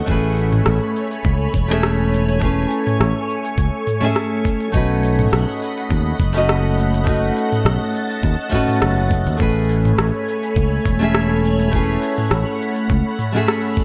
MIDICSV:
0, 0, Header, 1, 5, 480
1, 0, Start_track
1, 0, Tempo, 582524
1, 70, Time_signature, 4, 2, 24, 8
1, 11407, End_track
2, 0, Start_track
2, 0, Title_t, "String machine"
2, 0, Program_c, 0, 50
2, 0, Note_on_c, 0, 57, 86
2, 60, Note_on_c, 0, 83, 90
2, 64, Note_on_c, 0, 73, 78
2, 67, Note_on_c, 0, 80, 80
2, 1966, Note_off_c, 0, 83, 0
2, 1991, Note_on_c, 0, 85, 91
2, 3874, Note_off_c, 0, 73, 0
2, 3876, Note_off_c, 0, 80, 0
2, 3877, Note_off_c, 0, 57, 0
2, 3891, Note_off_c, 0, 85, 0
2, 3897, Note_on_c, 0, 83, 95
2, 3899, Note_on_c, 0, 75, 77
2, 3900, Note_on_c, 0, 57, 86
2, 3904, Note_on_c, 0, 78, 74
2, 5804, Note_off_c, 0, 83, 0
2, 5829, Note_on_c, 0, 81, 90
2, 7712, Note_off_c, 0, 75, 0
2, 7714, Note_off_c, 0, 78, 0
2, 7730, Note_off_c, 0, 81, 0
2, 7755, Note_on_c, 0, 80, 82
2, 7756, Note_on_c, 0, 83, 90
2, 7759, Note_on_c, 0, 73, 80
2, 9654, Note_off_c, 0, 80, 0
2, 9675, Note_on_c, 0, 78, 78
2, 11407, Note_off_c, 0, 57, 0
2, 11407, Note_off_c, 0, 73, 0
2, 11407, Note_off_c, 0, 78, 0
2, 11407, Note_off_c, 0, 83, 0
2, 11407, End_track
3, 0, Start_track
3, 0, Title_t, "Nylon-string guitar"
3, 0, Program_c, 1, 24
3, 48, Note_on_c, 1, 57, 78
3, 60, Note_on_c, 1, 61, 72
3, 71, Note_on_c, 1, 64, 71
3, 80, Note_on_c, 1, 68, 71
3, 86, Note_off_c, 1, 64, 0
3, 89, Note_on_c, 1, 71, 81
3, 1232, Note_off_c, 1, 57, 0
3, 1238, Note_off_c, 1, 61, 0
3, 1249, Note_off_c, 1, 68, 0
3, 1253, Note_off_c, 1, 71, 0
3, 1384, Note_on_c, 1, 57, 82
3, 1394, Note_on_c, 1, 61, 78
3, 1404, Note_on_c, 1, 64, 77
3, 1413, Note_on_c, 1, 68, 77
3, 1421, Note_off_c, 1, 64, 0
3, 1425, Note_on_c, 1, 76, 96
3, 1956, Note_off_c, 1, 57, 0
3, 1961, Note_off_c, 1, 61, 0
3, 1970, Note_off_c, 1, 68, 0
3, 1973, Note_on_c, 1, 57, 75
3, 1976, Note_off_c, 1, 76, 0
3, 1982, Note_on_c, 1, 61, 72
3, 1992, Note_on_c, 1, 64, 75
3, 2004, Note_on_c, 1, 68, 70
3, 2016, Note_on_c, 1, 71, 88
3, 3155, Note_off_c, 1, 57, 0
3, 3160, Note_off_c, 1, 61, 0
3, 3164, Note_off_c, 1, 64, 0
3, 3171, Note_off_c, 1, 68, 0
3, 3176, Note_off_c, 1, 71, 0
3, 3299, Note_on_c, 1, 57, 85
3, 3311, Note_on_c, 1, 61, 76
3, 3320, Note_on_c, 1, 64, 77
3, 3331, Note_on_c, 1, 68, 73
3, 3340, Note_off_c, 1, 64, 0
3, 3343, Note_on_c, 1, 76, 96
3, 3873, Note_off_c, 1, 57, 0
3, 3879, Note_off_c, 1, 61, 0
3, 3887, Note_on_c, 1, 57, 75
3, 3889, Note_off_c, 1, 68, 0
3, 3895, Note_off_c, 1, 76, 0
3, 3897, Note_on_c, 1, 61, 74
3, 3908, Note_on_c, 1, 63, 71
3, 3917, Note_on_c, 1, 66, 73
3, 3929, Note_on_c, 1, 71, 85
3, 5072, Note_off_c, 1, 57, 0
3, 5077, Note_off_c, 1, 61, 0
3, 5082, Note_off_c, 1, 63, 0
3, 5087, Note_off_c, 1, 66, 0
3, 5093, Note_off_c, 1, 71, 0
3, 5214, Note_on_c, 1, 57, 86
3, 5224, Note_on_c, 1, 61, 84
3, 5235, Note_on_c, 1, 63, 76
3, 5248, Note_on_c, 1, 66, 83
3, 5255, Note_on_c, 1, 75, 93
3, 5791, Note_off_c, 1, 57, 0
3, 5796, Note_off_c, 1, 61, 0
3, 5800, Note_on_c, 1, 57, 75
3, 5801, Note_off_c, 1, 63, 0
3, 5808, Note_off_c, 1, 66, 0
3, 5811, Note_off_c, 1, 75, 0
3, 5814, Note_on_c, 1, 61, 70
3, 5825, Note_on_c, 1, 63, 74
3, 5835, Note_on_c, 1, 66, 71
3, 5845, Note_on_c, 1, 71, 87
3, 6989, Note_off_c, 1, 57, 0
3, 6996, Note_off_c, 1, 61, 0
3, 6998, Note_on_c, 1, 57, 97
3, 7001, Note_off_c, 1, 63, 0
3, 7006, Note_off_c, 1, 66, 0
3, 7009, Note_on_c, 1, 61, 91
3, 7011, Note_off_c, 1, 71, 0
3, 7017, Note_on_c, 1, 63, 81
3, 7028, Note_on_c, 1, 66, 87
3, 7041, Note_on_c, 1, 71, 106
3, 7708, Note_off_c, 1, 57, 0
3, 7713, Note_off_c, 1, 61, 0
3, 7717, Note_off_c, 1, 63, 0
3, 7720, Note_on_c, 1, 57, 78
3, 7723, Note_off_c, 1, 66, 0
3, 7729, Note_off_c, 1, 71, 0
3, 7732, Note_on_c, 1, 61, 72
3, 7740, Note_on_c, 1, 64, 67
3, 7752, Note_on_c, 1, 68, 72
3, 7758, Note_off_c, 1, 64, 0
3, 7762, Note_on_c, 1, 71, 86
3, 8908, Note_off_c, 1, 57, 0
3, 8914, Note_off_c, 1, 61, 0
3, 8925, Note_off_c, 1, 68, 0
3, 8929, Note_off_c, 1, 71, 0
3, 9055, Note_on_c, 1, 57, 82
3, 9064, Note_on_c, 1, 61, 80
3, 9074, Note_on_c, 1, 64, 74
3, 9086, Note_on_c, 1, 68, 79
3, 9093, Note_off_c, 1, 64, 0
3, 9097, Note_on_c, 1, 76, 93
3, 9631, Note_off_c, 1, 57, 0
3, 9636, Note_off_c, 1, 61, 0
3, 9647, Note_off_c, 1, 68, 0
3, 9651, Note_on_c, 1, 57, 83
3, 9652, Note_off_c, 1, 76, 0
3, 9659, Note_on_c, 1, 61, 71
3, 9672, Note_on_c, 1, 64, 76
3, 9683, Note_on_c, 1, 68, 74
3, 9694, Note_on_c, 1, 71, 82
3, 10834, Note_off_c, 1, 57, 0
3, 10838, Note_off_c, 1, 61, 0
3, 10845, Note_off_c, 1, 64, 0
3, 10850, Note_off_c, 1, 68, 0
3, 10856, Note_off_c, 1, 71, 0
3, 10978, Note_on_c, 1, 57, 81
3, 10988, Note_on_c, 1, 61, 79
3, 11001, Note_on_c, 1, 64, 75
3, 11011, Note_on_c, 1, 68, 78
3, 11018, Note_off_c, 1, 64, 0
3, 11021, Note_on_c, 1, 76, 90
3, 11407, Note_off_c, 1, 57, 0
3, 11407, Note_off_c, 1, 61, 0
3, 11407, Note_off_c, 1, 68, 0
3, 11407, Note_off_c, 1, 76, 0
3, 11407, End_track
4, 0, Start_track
4, 0, Title_t, "Fretless electric bass"
4, 0, Program_c, 2, 35
4, 68, Note_on_c, 2, 33, 98
4, 496, Note_off_c, 2, 33, 0
4, 551, Note_on_c, 2, 33, 94
4, 641, Note_off_c, 2, 33, 0
4, 1029, Note_on_c, 2, 37, 93
4, 1203, Note_off_c, 2, 37, 0
4, 1269, Note_on_c, 2, 28, 81
4, 2177, Note_off_c, 2, 28, 0
4, 2475, Note_on_c, 2, 33, 92
4, 2563, Note_off_c, 2, 33, 0
4, 2947, Note_on_c, 2, 37, 96
4, 3039, Note_off_c, 2, 37, 0
4, 3907, Note_on_c, 2, 35, 98
4, 4335, Note_off_c, 2, 35, 0
4, 4391, Note_on_c, 2, 35, 93
4, 4481, Note_off_c, 2, 35, 0
4, 4867, Note_on_c, 2, 39, 95
4, 5042, Note_off_c, 2, 39, 0
4, 5104, Note_on_c, 2, 30, 80
4, 6014, Note_off_c, 2, 30, 0
4, 6304, Note_on_c, 2, 35, 92
4, 6398, Note_off_c, 2, 35, 0
4, 6785, Note_on_c, 2, 39, 88
4, 6878, Note_off_c, 2, 39, 0
4, 7269, Note_on_c, 2, 30, 90
4, 7634, Note_on_c, 2, 39, 88
4, 7646, Note_off_c, 2, 30, 0
4, 7714, Note_off_c, 2, 39, 0
4, 7746, Note_on_c, 2, 33, 100
4, 8175, Note_off_c, 2, 33, 0
4, 8228, Note_on_c, 2, 33, 94
4, 8320, Note_off_c, 2, 33, 0
4, 8704, Note_on_c, 2, 37, 98
4, 8881, Note_off_c, 2, 37, 0
4, 8944, Note_on_c, 2, 28, 81
4, 9854, Note_off_c, 2, 28, 0
4, 10145, Note_on_c, 2, 33, 93
4, 10238, Note_off_c, 2, 33, 0
4, 10628, Note_on_c, 2, 37, 99
4, 10720, Note_off_c, 2, 37, 0
4, 11407, End_track
5, 0, Start_track
5, 0, Title_t, "Drums"
5, 62, Note_on_c, 9, 46, 54
5, 67, Note_on_c, 9, 36, 114
5, 70, Note_on_c, 9, 69, 33
5, 145, Note_off_c, 9, 46, 0
5, 149, Note_off_c, 9, 36, 0
5, 153, Note_off_c, 9, 69, 0
5, 305, Note_on_c, 9, 46, 46
5, 313, Note_on_c, 9, 69, 75
5, 387, Note_off_c, 9, 46, 0
5, 396, Note_off_c, 9, 69, 0
5, 434, Note_on_c, 9, 45, 78
5, 434, Note_on_c, 9, 46, 41
5, 442, Note_on_c, 9, 69, 43
5, 516, Note_off_c, 9, 45, 0
5, 516, Note_off_c, 9, 46, 0
5, 524, Note_off_c, 9, 69, 0
5, 542, Note_on_c, 9, 37, 94
5, 542, Note_on_c, 9, 46, 54
5, 550, Note_on_c, 9, 69, 31
5, 624, Note_off_c, 9, 37, 0
5, 624, Note_off_c, 9, 46, 0
5, 633, Note_off_c, 9, 69, 0
5, 793, Note_on_c, 9, 69, 81
5, 875, Note_off_c, 9, 69, 0
5, 917, Note_on_c, 9, 46, 39
5, 925, Note_on_c, 9, 69, 44
5, 999, Note_off_c, 9, 46, 0
5, 1008, Note_off_c, 9, 69, 0
5, 1028, Note_on_c, 9, 36, 118
5, 1031, Note_on_c, 9, 46, 50
5, 1039, Note_on_c, 9, 69, 32
5, 1111, Note_off_c, 9, 36, 0
5, 1113, Note_off_c, 9, 46, 0
5, 1121, Note_off_c, 9, 69, 0
5, 1269, Note_on_c, 9, 36, 114
5, 1271, Note_on_c, 9, 46, 29
5, 1279, Note_on_c, 9, 69, 81
5, 1351, Note_off_c, 9, 36, 0
5, 1353, Note_off_c, 9, 46, 0
5, 1362, Note_off_c, 9, 69, 0
5, 1401, Note_on_c, 9, 46, 44
5, 1409, Note_on_c, 9, 69, 45
5, 1484, Note_off_c, 9, 46, 0
5, 1492, Note_off_c, 9, 69, 0
5, 1510, Note_on_c, 9, 37, 99
5, 1510, Note_on_c, 9, 46, 54
5, 1519, Note_on_c, 9, 69, 32
5, 1593, Note_off_c, 9, 37, 0
5, 1593, Note_off_c, 9, 46, 0
5, 1601, Note_off_c, 9, 69, 0
5, 1760, Note_on_c, 9, 69, 82
5, 1843, Note_off_c, 9, 69, 0
5, 1884, Note_on_c, 9, 46, 45
5, 1892, Note_on_c, 9, 69, 46
5, 1967, Note_off_c, 9, 46, 0
5, 1975, Note_off_c, 9, 69, 0
5, 1991, Note_on_c, 9, 36, 118
5, 1992, Note_on_c, 9, 46, 56
5, 2000, Note_on_c, 9, 69, 33
5, 2073, Note_off_c, 9, 36, 0
5, 2074, Note_off_c, 9, 46, 0
5, 2083, Note_off_c, 9, 69, 0
5, 2232, Note_on_c, 9, 46, 50
5, 2240, Note_on_c, 9, 69, 75
5, 2314, Note_off_c, 9, 46, 0
5, 2322, Note_off_c, 9, 69, 0
5, 2364, Note_on_c, 9, 45, 82
5, 2364, Note_on_c, 9, 46, 42
5, 2372, Note_on_c, 9, 69, 44
5, 2447, Note_off_c, 9, 45, 0
5, 2447, Note_off_c, 9, 46, 0
5, 2455, Note_off_c, 9, 69, 0
5, 2478, Note_on_c, 9, 37, 97
5, 2478, Note_on_c, 9, 46, 51
5, 2486, Note_on_c, 9, 69, 33
5, 2560, Note_off_c, 9, 37, 0
5, 2560, Note_off_c, 9, 46, 0
5, 2568, Note_off_c, 9, 69, 0
5, 2719, Note_on_c, 9, 69, 81
5, 2802, Note_off_c, 9, 69, 0
5, 2841, Note_on_c, 9, 46, 43
5, 2849, Note_on_c, 9, 69, 44
5, 2923, Note_off_c, 9, 46, 0
5, 2932, Note_off_c, 9, 69, 0
5, 2948, Note_on_c, 9, 36, 106
5, 2952, Note_on_c, 9, 46, 49
5, 2961, Note_on_c, 9, 69, 29
5, 3031, Note_off_c, 9, 36, 0
5, 3035, Note_off_c, 9, 46, 0
5, 3043, Note_off_c, 9, 69, 0
5, 3190, Note_on_c, 9, 45, 66
5, 3190, Note_on_c, 9, 46, 33
5, 3198, Note_on_c, 9, 69, 76
5, 3272, Note_off_c, 9, 45, 0
5, 3272, Note_off_c, 9, 46, 0
5, 3281, Note_off_c, 9, 69, 0
5, 3317, Note_on_c, 9, 45, 66
5, 3317, Note_on_c, 9, 46, 43
5, 3325, Note_on_c, 9, 69, 44
5, 3399, Note_off_c, 9, 45, 0
5, 3399, Note_off_c, 9, 46, 0
5, 3407, Note_off_c, 9, 69, 0
5, 3427, Note_on_c, 9, 37, 94
5, 3427, Note_on_c, 9, 46, 56
5, 3436, Note_on_c, 9, 69, 31
5, 3510, Note_off_c, 9, 37, 0
5, 3510, Note_off_c, 9, 46, 0
5, 3518, Note_off_c, 9, 69, 0
5, 3667, Note_on_c, 9, 36, 101
5, 3674, Note_on_c, 9, 69, 77
5, 3750, Note_off_c, 9, 36, 0
5, 3757, Note_off_c, 9, 69, 0
5, 3794, Note_on_c, 9, 46, 47
5, 3803, Note_on_c, 9, 69, 44
5, 3877, Note_off_c, 9, 46, 0
5, 3885, Note_off_c, 9, 69, 0
5, 3906, Note_on_c, 9, 46, 60
5, 3907, Note_on_c, 9, 36, 112
5, 3915, Note_on_c, 9, 69, 32
5, 3989, Note_off_c, 9, 36, 0
5, 3989, Note_off_c, 9, 46, 0
5, 3997, Note_off_c, 9, 69, 0
5, 4148, Note_on_c, 9, 46, 49
5, 4156, Note_on_c, 9, 69, 72
5, 4231, Note_off_c, 9, 46, 0
5, 4239, Note_off_c, 9, 69, 0
5, 4277, Note_on_c, 9, 45, 82
5, 4277, Note_on_c, 9, 46, 48
5, 4285, Note_on_c, 9, 69, 43
5, 4359, Note_off_c, 9, 45, 0
5, 4359, Note_off_c, 9, 46, 0
5, 4367, Note_off_c, 9, 69, 0
5, 4391, Note_on_c, 9, 37, 97
5, 4391, Note_on_c, 9, 46, 53
5, 4399, Note_on_c, 9, 69, 28
5, 4473, Note_off_c, 9, 37, 0
5, 4473, Note_off_c, 9, 46, 0
5, 4482, Note_off_c, 9, 69, 0
5, 4640, Note_on_c, 9, 69, 74
5, 4723, Note_off_c, 9, 69, 0
5, 4761, Note_on_c, 9, 46, 45
5, 4769, Note_on_c, 9, 69, 43
5, 4843, Note_off_c, 9, 46, 0
5, 4851, Note_off_c, 9, 69, 0
5, 4866, Note_on_c, 9, 36, 104
5, 4870, Note_on_c, 9, 46, 50
5, 4878, Note_on_c, 9, 69, 29
5, 4948, Note_off_c, 9, 36, 0
5, 4952, Note_off_c, 9, 46, 0
5, 4961, Note_off_c, 9, 69, 0
5, 5106, Note_on_c, 9, 36, 116
5, 5108, Note_on_c, 9, 46, 31
5, 5116, Note_on_c, 9, 69, 80
5, 5188, Note_off_c, 9, 36, 0
5, 5190, Note_off_c, 9, 46, 0
5, 5199, Note_off_c, 9, 69, 0
5, 5240, Note_on_c, 9, 46, 48
5, 5248, Note_on_c, 9, 69, 42
5, 5323, Note_off_c, 9, 46, 0
5, 5331, Note_off_c, 9, 69, 0
5, 5349, Note_on_c, 9, 37, 98
5, 5349, Note_on_c, 9, 46, 61
5, 5357, Note_on_c, 9, 69, 33
5, 5431, Note_off_c, 9, 37, 0
5, 5431, Note_off_c, 9, 46, 0
5, 5439, Note_off_c, 9, 69, 0
5, 5595, Note_on_c, 9, 69, 76
5, 5678, Note_off_c, 9, 69, 0
5, 5721, Note_on_c, 9, 46, 50
5, 5729, Note_on_c, 9, 69, 44
5, 5804, Note_off_c, 9, 46, 0
5, 5812, Note_off_c, 9, 69, 0
5, 5826, Note_on_c, 9, 36, 123
5, 5831, Note_on_c, 9, 46, 59
5, 5839, Note_on_c, 9, 69, 32
5, 5908, Note_off_c, 9, 36, 0
5, 5913, Note_off_c, 9, 46, 0
5, 5922, Note_off_c, 9, 69, 0
5, 6072, Note_on_c, 9, 46, 52
5, 6080, Note_on_c, 9, 69, 75
5, 6154, Note_off_c, 9, 46, 0
5, 6162, Note_off_c, 9, 69, 0
5, 6200, Note_on_c, 9, 45, 79
5, 6200, Note_on_c, 9, 46, 46
5, 6208, Note_on_c, 9, 69, 42
5, 6282, Note_off_c, 9, 45, 0
5, 6282, Note_off_c, 9, 46, 0
5, 6291, Note_off_c, 9, 69, 0
5, 6312, Note_on_c, 9, 37, 101
5, 6312, Note_on_c, 9, 46, 55
5, 6320, Note_on_c, 9, 69, 33
5, 6395, Note_off_c, 9, 37, 0
5, 6395, Note_off_c, 9, 46, 0
5, 6403, Note_off_c, 9, 69, 0
5, 6550, Note_on_c, 9, 46, 35
5, 6558, Note_on_c, 9, 69, 75
5, 6632, Note_off_c, 9, 46, 0
5, 6641, Note_off_c, 9, 69, 0
5, 6679, Note_on_c, 9, 46, 42
5, 6687, Note_on_c, 9, 69, 42
5, 6761, Note_off_c, 9, 46, 0
5, 6769, Note_off_c, 9, 69, 0
5, 6784, Note_on_c, 9, 36, 116
5, 6793, Note_on_c, 9, 46, 52
5, 6801, Note_on_c, 9, 69, 29
5, 6867, Note_off_c, 9, 36, 0
5, 6875, Note_off_c, 9, 46, 0
5, 6883, Note_off_c, 9, 69, 0
5, 7025, Note_on_c, 9, 36, 64
5, 7028, Note_on_c, 9, 45, 66
5, 7028, Note_on_c, 9, 46, 32
5, 7036, Note_on_c, 9, 69, 81
5, 7107, Note_off_c, 9, 36, 0
5, 7111, Note_off_c, 9, 45, 0
5, 7111, Note_off_c, 9, 46, 0
5, 7119, Note_off_c, 9, 69, 0
5, 7155, Note_on_c, 9, 45, 64
5, 7155, Note_on_c, 9, 46, 50
5, 7163, Note_on_c, 9, 69, 43
5, 7237, Note_off_c, 9, 45, 0
5, 7237, Note_off_c, 9, 46, 0
5, 7246, Note_off_c, 9, 69, 0
5, 7267, Note_on_c, 9, 37, 106
5, 7267, Note_on_c, 9, 46, 58
5, 7275, Note_on_c, 9, 69, 34
5, 7349, Note_off_c, 9, 37, 0
5, 7349, Note_off_c, 9, 46, 0
5, 7357, Note_off_c, 9, 69, 0
5, 7506, Note_on_c, 9, 36, 100
5, 7510, Note_on_c, 9, 46, 34
5, 7519, Note_on_c, 9, 69, 82
5, 7588, Note_off_c, 9, 36, 0
5, 7593, Note_off_c, 9, 46, 0
5, 7601, Note_off_c, 9, 69, 0
5, 7638, Note_on_c, 9, 46, 51
5, 7646, Note_on_c, 9, 69, 45
5, 7720, Note_off_c, 9, 46, 0
5, 7728, Note_off_c, 9, 69, 0
5, 7745, Note_on_c, 9, 36, 127
5, 7750, Note_on_c, 9, 46, 61
5, 7758, Note_on_c, 9, 69, 35
5, 7828, Note_off_c, 9, 36, 0
5, 7832, Note_off_c, 9, 46, 0
5, 7840, Note_off_c, 9, 69, 0
5, 7988, Note_on_c, 9, 46, 55
5, 7996, Note_on_c, 9, 69, 80
5, 8070, Note_off_c, 9, 46, 0
5, 8078, Note_off_c, 9, 69, 0
5, 8119, Note_on_c, 9, 45, 80
5, 8119, Note_on_c, 9, 46, 46
5, 8127, Note_on_c, 9, 69, 41
5, 8202, Note_off_c, 9, 45, 0
5, 8202, Note_off_c, 9, 46, 0
5, 8210, Note_off_c, 9, 69, 0
5, 8227, Note_on_c, 9, 37, 108
5, 8227, Note_on_c, 9, 46, 58
5, 8236, Note_on_c, 9, 69, 32
5, 8310, Note_off_c, 9, 37, 0
5, 8310, Note_off_c, 9, 46, 0
5, 8318, Note_off_c, 9, 69, 0
5, 8475, Note_on_c, 9, 69, 75
5, 8558, Note_off_c, 9, 69, 0
5, 8597, Note_on_c, 9, 46, 46
5, 8606, Note_on_c, 9, 69, 47
5, 8680, Note_off_c, 9, 46, 0
5, 8688, Note_off_c, 9, 69, 0
5, 8704, Note_on_c, 9, 36, 118
5, 8706, Note_on_c, 9, 46, 54
5, 8714, Note_on_c, 9, 69, 31
5, 8786, Note_off_c, 9, 36, 0
5, 8788, Note_off_c, 9, 46, 0
5, 8796, Note_off_c, 9, 69, 0
5, 8944, Note_on_c, 9, 46, 34
5, 8945, Note_on_c, 9, 36, 114
5, 8952, Note_on_c, 9, 69, 78
5, 9026, Note_off_c, 9, 46, 0
5, 9027, Note_off_c, 9, 36, 0
5, 9034, Note_off_c, 9, 69, 0
5, 9075, Note_on_c, 9, 46, 50
5, 9083, Note_on_c, 9, 69, 44
5, 9157, Note_off_c, 9, 46, 0
5, 9165, Note_off_c, 9, 69, 0
5, 9184, Note_on_c, 9, 37, 109
5, 9184, Note_on_c, 9, 46, 61
5, 9192, Note_on_c, 9, 69, 36
5, 9266, Note_off_c, 9, 37, 0
5, 9266, Note_off_c, 9, 46, 0
5, 9274, Note_off_c, 9, 69, 0
5, 9435, Note_on_c, 9, 69, 84
5, 9518, Note_off_c, 9, 69, 0
5, 9555, Note_on_c, 9, 46, 48
5, 9563, Note_on_c, 9, 69, 50
5, 9637, Note_off_c, 9, 46, 0
5, 9645, Note_off_c, 9, 69, 0
5, 9666, Note_on_c, 9, 36, 127
5, 9666, Note_on_c, 9, 46, 55
5, 9674, Note_on_c, 9, 69, 35
5, 9748, Note_off_c, 9, 36, 0
5, 9748, Note_off_c, 9, 46, 0
5, 9756, Note_off_c, 9, 69, 0
5, 9906, Note_on_c, 9, 46, 50
5, 9914, Note_on_c, 9, 69, 79
5, 9988, Note_off_c, 9, 46, 0
5, 9996, Note_off_c, 9, 69, 0
5, 10036, Note_on_c, 9, 45, 72
5, 10036, Note_on_c, 9, 46, 42
5, 10045, Note_on_c, 9, 69, 46
5, 10119, Note_off_c, 9, 45, 0
5, 10119, Note_off_c, 9, 46, 0
5, 10127, Note_off_c, 9, 69, 0
5, 10144, Note_on_c, 9, 37, 106
5, 10144, Note_on_c, 9, 46, 57
5, 10152, Note_on_c, 9, 69, 32
5, 10227, Note_off_c, 9, 37, 0
5, 10227, Note_off_c, 9, 46, 0
5, 10235, Note_off_c, 9, 69, 0
5, 10396, Note_on_c, 9, 69, 85
5, 10479, Note_off_c, 9, 69, 0
5, 10517, Note_on_c, 9, 46, 45
5, 10526, Note_on_c, 9, 69, 42
5, 10600, Note_off_c, 9, 46, 0
5, 10608, Note_off_c, 9, 69, 0
5, 10627, Note_on_c, 9, 46, 50
5, 10628, Note_on_c, 9, 36, 121
5, 10635, Note_on_c, 9, 69, 32
5, 10710, Note_off_c, 9, 36, 0
5, 10710, Note_off_c, 9, 46, 0
5, 10718, Note_off_c, 9, 69, 0
5, 10868, Note_on_c, 9, 45, 65
5, 10868, Note_on_c, 9, 46, 35
5, 10876, Note_on_c, 9, 69, 84
5, 10950, Note_off_c, 9, 45, 0
5, 10950, Note_off_c, 9, 46, 0
5, 10959, Note_off_c, 9, 69, 0
5, 10998, Note_on_c, 9, 45, 62
5, 10998, Note_on_c, 9, 46, 46
5, 11006, Note_on_c, 9, 69, 47
5, 11080, Note_off_c, 9, 45, 0
5, 11080, Note_off_c, 9, 46, 0
5, 11088, Note_off_c, 9, 69, 0
5, 11110, Note_on_c, 9, 37, 111
5, 11110, Note_on_c, 9, 46, 57
5, 11118, Note_on_c, 9, 69, 35
5, 11192, Note_off_c, 9, 37, 0
5, 11192, Note_off_c, 9, 46, 0
5, 11200, Note_off_c, 9, 69, 0
5, 11347, Note_on_c, 9, 36, 118
5, 11360, Note_on_c, 9, 69, 88
5, 11407, Note_off_c, 9, 36, 0
5, 11407, Note_off_c, 9, 69, 0
5, 11407, End_track
0, 0, End_of_file